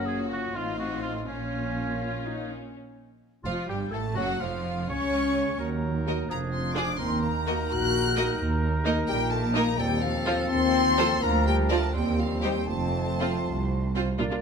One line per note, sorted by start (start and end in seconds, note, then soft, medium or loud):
0.00 0.50 F#1 medium
0.00 0.50 F#2 medium
0.00 0.50 A#3 medium
0.00 0.51 C#4 medium
0.00 0.57 C#4 medium
0.00 0.16 F#4 medium
0.00 0.51 F#4 medium
0.00 0.50 C#5 medium
0.00 0.25 F#5 medium
0.05 0.28 G#4 medium
0.05 0.18 G#4 medium
0.18 0.54 F4 medium
0.29 0.40 F#4 medium
0.29 0.57 F#4 medium
0.53 1.26 A1 medium
0.53 1.26 A2 medium
0.53 1.27 C4 medium
0.53 1.27 D#4 medium
0.53 1.28 D#4 medium
0.53 0.77 F4 medium
0.53 1.27 F4 medium
0.53 0.79 F4 medium
0.53 1.27 D#5 medium
0.53 1.26 F5 medium
0.79 0.89 F#4 medium
0.79 1.02 F#4 medium
1.02 1.28 F4 medium
1.02 1.14 F4 medium
1.25 2.55 A#1 medium
1.25 2.55 A#2 medium
1.25 2.48 A#3 medium
1.25 2.48 C#4 medium
1.25 1.96 C#4 medium
1.25 2.51 C#4 medium
1.25 2.49 C#4 medium
1.25 2.53 F4 medium
1.25 2.52 C#5 medium
2.02 2.25 F4 medium
2.26 2.51 D#4 medium
2.50 2.75 C#4 medium
3.43 3.54 F1 medium
3.43 3.53 F2 medium
3.43 3.68 F3 medium
3.43 3.57 F3 medium
3.43 3.55 F4 medium
3.43 3.68 F4 medium
3.43 3.51 F5 medium
3.43 3.53 F5 medium
3.43 3.68 F5 medium
3.68 3.93 G1 medium
3.68 3.93 G2 medium
3.68 3.92 G3 medium
3.68 3.80 G3 medium
3.68 3.79 G4 medium
3.68 3.78 G4 medium
3.68 3.92 G5 medium
3.68 3.93 G5 medium
3.68 3.95 G5 medium
3.91 4.16 A1 medium
3.91 4.16 A2 medium
3.91 4.15 A3 medium
3.91 4.16 A3 medium
3.91 4.17 A3 medium
3.91 4.02 A4 medium
3.91 4.15 A5 medium
3.91 4.17 A5 medium
4.14 4.41 F#1 medium
4.14 4.41 F#2 medium
4.14 4.40 F#3 medium
4.14 4.28 F#3 medium
4.14 4.26 F#4 medium
4.14 4.41 F#4 loud
4.14 4.22 F#5 medium
4.14 4.41 F#5 loud
4.14 4.43 F#5 medium
4.38 4.90 F1 medium
4.38 4.89 F2 medium
4.38 4.88 F3 medium
4.38 4.90 F3 medium
4.38 4.89 F3 medium
4.38 4.89 F4 medium
4.38 4.89 F5 medium
4.42 4.90 F4 medium
4.42 4.91 F5 medium
4.89 5.61 C#2 medium
4.89 5.60 C#3 medium
4.89 5.58 C#4 medium
4.89 5.59 C#4 medium
4.89 5.59 C#5 medium
4.89 5.61 C#5 medium
4.89 5.59 C#6 medium
4.89 5.60 C#6 loud
5.60 6.18 D#2 medium
5.60 6.31 F#3 medium
5.60 6.30 D#4 medium
5.60 6.32 A#4 medium
6.06 6.17 A#3 medium
6.06 6.17 F#4 medium
6.06 6.18 A#4 medium
6.06 6.18 D#5 medium
6.28 6.87 F1 medium
6.28 6.87 F2 medium
6.28 6.99 F3 medium
6.28 6.50 A#3 medium
6.28 7.00 D4 medium
6.28 6.98 G#4 medium
6.28 6.36 A#5 medium
6.28 6.39 A#5 loud
6.51 6.75 C4 medium
6.51 6.75 C6 medium
6.51 6.76 C6 medium
6.74 6.86 D4 medium
6.74 6.99 D4 medium
6.74 6.86 F4 medium
6.74 6.87 G#4 medium
6.74 6.87 D5 medium
6.74 6.98 D6 loud
6.74 6.99 D6 medium
6.98 7.59 D#2 medium
6.98 9.74 D#3 medium
6.98 7.23 C4 medium
6.98 9.78 D#4 medium
6.98 9.63 A#4 medium
6.98 7.22 C6 loud
6.98 7.23 C6 medium
7.21 7.71 A#3 medium
7.21 7.70 A#5 loud
7.21 7.72 A#5 medium
7.46 7.58 A#3 medium
7.46 7.58 F#4 medium
7.46 7.58 A#4 medium
7.46 7.59 D#5 medium
7.70 8.28 A#1 medium
7.70 8.28 A#2 medium
7.70 8.38 F#4 loud
7.70 8.39 F#6 loud
7.70 8.40 F#6 medium
8.16 8.27 A#3 medium
8.16 8.27 F#4 medium
8.16 8.27 A#4 medium
8.16 8.28 D#5 medium
8.39 8.96 D#2 loud
8.39 8.97 D#2 medium
8.84 8.95 A#3 medium
8.84 8.95 D#4 medium
8.84 8.96 A#4 medium
8.84 8.96 D#5 medium
9.07 9.67 A#1 medium
9.07 9.67 A#2 medium
9.07 9.19 G3 loud
9.07 9.29 G5 loud
9.07 9.30 G5 loud
9.30 9.41 A3 medium
9.30 9.54 A5 loud
9.30 9.56 A5 loud
9.54 9.66 A#3 medium
9.54 9.78 A#3 loud
9.54 9.65 D#4 medium
9.54 9.66 A#4 loud
9.54 9.66 D#5 medium
9.54 9.78 A#5 loud
9.54 9.79 A#5 loud
9.78 10.39 D#2 medium
9.78 10.39 D#2 loud
9.78 11.20 F3 medium
9.78 10.02 G3 loud
9.78 11.06 C4 loud
9.78 11.20 A4 loud
9.78 10.02 G5 loud
9.78 10.03 G5 loud
10.01 10.50 F3 medium
10.01 10.50 F5 loud
10.01 10.52 F5 loud
10.26 10.38 F3 medium
10.26 10.37 F4 medium
10.26 10.38 A4 medium
10.26 10.38 C5 medium
10.50 11.10 D#2 medium
10.50 11.11 D#2 loud
10.50 11.21 C4 loud
10.50 11.21 C6 loud
10.50 11.22 C6 loud
10.97 11.10 F3 medium
10.97 11.09 F4 medium
10.97 11.09 A4 loud
10.97 11.09 C5 loud
11.22 11.82 D2 loud
11.22 11.82 D2 medium
11.22 11.97 F3 loud
11.22 11.46 A#3 loud
11.22 11.96 D4 medium
11.22 11.91 A#4 loud
11.22 11.46 A#5 loud
11.22 11.47 A#5 loud
11.46 11.70 G3 loud
11.46 11.54 G5 loud
11.46 11.71 G5 loud
11.69 11.82 F3 medium
11.69 11.94 A3 medium
11.69 11.82 F4 medium
11.69 11.81 A#4 medium
11.69 11.81 D5 medium
11.69 11.94 A5 loud
11.69 11.95 A5 medium
11.93 12.56 D#2 medium
11.93 12.18 G3 loud
11.93 12.71 G3 medium
11.93 12.67 C4 medium
11.93 12.67 C5 medium
11.93 12.19 G5 loud
12.19 12.44 F3 medium
12.19 12.25 F5 medium
12.19 12.44 F5 loud
12.43 12.55 G3 medium
12.43 12.69 G3 medium
12.43 12.55 D#4 medium
12.43 12.55 G4 medium
12.43 12.55 C5 medium
12.43 12.68 G5 medium
12.43 12.69 G5 loud
12.67 13.32 F1 medium
12.67 13.32 F2 medium
12.67 13.95 F3 medium
12.67 13.91 A3 medium
12.67 13.92 C4 medium
12.67 13.92 C5 medium
12.67 13.94 A5 loud
12.67 13.93 A5 loud
13.19 13.32 C4 medium
13.19 13.31 F4 medium
13.19 13.32 C5 medium
13.44 14.07 C2 medium
13.95 14.06 C4 medium
13.95 14.06 F4 medium
13.95 14.07 C5 medium
14.19 14.24 A#1 loud
14.19 14.24 A#2 medium
14.19 14.41 A#3 medium
14.19 14.24 D4 medium
14.19 14.24 F4 loud
14.19 14.41 D5 medium
14.30 14.35 A#2 medium
14.30 14.36 D4 medium
14.30 14.35 F4 medium